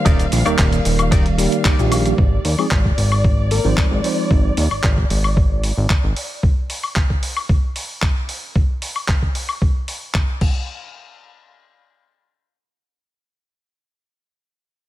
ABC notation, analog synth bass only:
X:1
M:4/4
L:1/16
Q:1/4=113
K:Ablyd
V:1 name="Analog synth bass" clef=bass
E,,,2 B,,, E,,, E,,,2 E,,,4- E,,, z2 B,,,3 | A,,,2 E,, z A,,,2 A,,,4- A,,, A,,, z A,,, z2 | A,,,2 E,, A,,, A,,,2 A,,,4- A,,, A,,, z A,,, z2 | z16 |
z16 | z16 | z16 |]